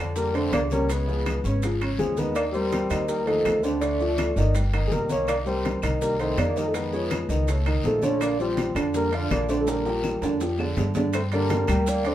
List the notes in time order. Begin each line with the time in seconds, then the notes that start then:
Already playing: F2 D3 D4
0.00 D5
0.16 G3 A#4, high bongo, high conga, long guiro, maracas
0.33 D3 A3 D4 C5 D5, high conga, high timbale, maracas
0.52 C#2 A#3 D5, high bongo, low bongo, high conga, high timbale, low timbale, short guiro, claves, maracas
0.70 C#3 G3 C#4 A#4 C#5, high conga, short guiro, maracas
0.89 C#3 G#3 C#4 B4 C#5, high bongo, high conga, high timbale, long guiro, maracas
1.08 F3 F4 G#4, high conga, maracas
1.26 high bongo, high conga, high timbale, short guiro, claves, maracas
1.44 G#1 C#3 C#4 C#5, high bongo, high conga, short guiro, maracas
1.63 F3 F4 G#4, high bongo, high conga, high timbale, long guiro, maracas
1.81 C#3 C#4 C#5, high bongo, high conga, high timbale, claves, maracas
1.99 D#2 F3 G#4, high bongo, low bongo, high conga, short guiro, maracas
2.17 D#3 G#3 D#4 B4 D#5, high bongo, high conga, short guiro, maracas
2.35 A#3 D5, high bongo, high timbale, long guiro, claves, maracas
2.52 G3 G4 A#4 C5, high conga, maracas
2.72 high bongo, high conga, high timbale, short guiro, maracas
2.90 D#2 D#3 D#4 D#5, high conga, high timbale, short guiro, claves, maracas
3.07 G3 A#4, high bongo, high conga, long guiro, maracas
3.24 D#3 F3 D#4 A4 D#5, high conga, high timbale, maracas
3.45 D2, high bongo, low bongo, high conga, high timbale, short guiro, claves, maracas
3.62 D3 A3 D4 C5 D5, short guiro, maracas
3.80 D3 A3 D4 D5, high bongo, high conga, high timbale, long guiro, maracas
4.00 F3 F4 A4, high conga, maracas
4.18 high bongo, high conga, high timbale, short guiro, claves, maracas
4.36 G1 D#3 D#4 D#5, high bongo, high conga, short guiro, maracas
4.55 G3 G4 B4, high bongo, high conga, high timbale, long guiro, maracas
4.73 D#3 D#4 D#5, high bongo, high conga, high timbale, claves, maracas
4.87 F3 G#4
4.91 C2 G3 A#4, high bongo, low bongo, high conga, short guiro, maracas
5.09 D#3 A#3 D#4 C#5 D#5, high bongo, high conga, short guiro, maracas
5.28 A#3 D5, high bongo, high conga, high timbale, long guiro, claves, maracas
5.46 G3 G4 A#4 C5, high conga, maracas
5.64 high bongo, high conga, high timbale, short guiro, maracas
5.82 C2 D#3 D#4 D#5, high conga, high timbale, short guiro, claves, maracas
6.01 G3 A#4, high bongo, high conga, long guiro, maracas
6.19 D#3 A3 D#4 C5 D#5, high conga, high timbale, maracas
6.37 F2 A#3 D5, high bongo, low bongo, high conga, high timbale, low timbale, short guiro, claves, maracas
6.56 D#3 G3 D#4 A#4 D#5, short guiro, maracas
6.67 F3 A4
6.74 D#3 G#3 D#4 B4 D#5, high bongo, high conga, high timbale, long guiro, maracas
6.93 F3 G#4 C#5, high conga, maracas
7.11 high bongo, high conga, high timbale, short guiro, claves, maracas
7.29 C#2 D#3 D#4 D#5, high bongo, high conga, short guiro, maracas
7.47 A3 A4 C#5, high bongo, high conga, high timbale, long guiro, maracas
7.66 D#3 D#4 D#5, high bongo, high conga, high timbale, claves, maracas
7.84 A#1 F3 A4, high bongo, low bongo, high conga, low timbale, short guiro, maracas
8.02 D3 A3 D4 C#5 D5, high bongo, high conga, short guiro, maracas
8.20 A#3 D5, high bongo, high conga, high timbale, long guiro, claves, maracas
8.39 F3 G3 F4 G4 C5, high conga, maracas
8.57 high bongo, high conga, high timbale, short guiro, maracas
8.75 F2 D3 D4 D5, high conga, high timbale, short guiro, claves, maracas
8.93 G3 A#4, high bongo, high conga, long guiro, maracas
9.12 D3 D4 D5 F5, high conga, high timbale, maracas
9.30 A#1 A#3 D5, high bongo, low bongo, high conga, high timbale, short guiro, claves, maracas
9.49 D3 A3 D4 C5 D5, short guiro, maracas
9.60 F3 A4
9.67 D3 G3 D4 A#4 D5, high bongo, high conga, high timbale, long guiro, maracas
9.85 F3 F4 G4, high conga, high timbale, maracas
10.04 high bongo, high conga, short guiro, claves, maracas
10.21 F2 D3 D4 D5, high bongo, high conga, high timbale, short guiro, maracas
10.40 F3 F4 G4, high bongo, high conga, low timbale, long guiro, maracas
10.58 D3 D4 D5, high bongo, high conga, low timbale, claves, maracas
10.76 G2, high bongo, low bongo, high conga, low timbale, short guiro, maracas
10.94 D3 D4 D5, high bongo, high conga, low timbale, short guiro, maracas
11.13 A3 C5, high bongo, high conga, high timbale, long guiro, claves, maracas
11.32 D3 G3 D4 A#4 D5, high conga, high timbale, maracas
11.49 high bongo, high conga, high timbale, low timbale, short guiro, maracas
11.67 D2 G3 G4 G5, high conga, low conga, high timbale, short guiro, claves, maracas
11.86 A#3 D5, high bongo, high conga, long guiro, maracas
12.04 A3 D4 C5 D5 D6, high conga, high timbale, maracas